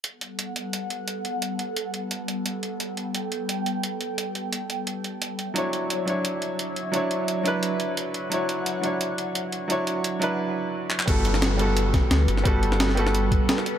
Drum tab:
HH |x-x-x-x-x-x-x-x-|x-x-x-x-x-x-x-x-|x-x-x-x-x-x-x-x-|x-x-x-x-x-x-x-x-|
CP |----------------|----------------|----------------|----------------|
SD |----------------|----------------|----------------|----------------|
BD |----------------|----------------|----------------|----------------|

HH |x-x-x-x-x-x-x-x-|x-x-x-x-x-x-x-x-|x-x-x-x-x-x-x-x-|x-x-x-x---------|
CP |----------------|----------------|----------------|--------------xx|
SD |----------------|----------------|----------------|----------------|
BD |----------------|----------------|----------------|----------------|

HH |x-x-x-x-x-x-x-x-|x-x-x-x-x-x-x-x-|
CP |----------------|----------------|
SD |---oo-----o-o--o|---ooo-o----oo--|
BD |o---------o-----|o---------o-----|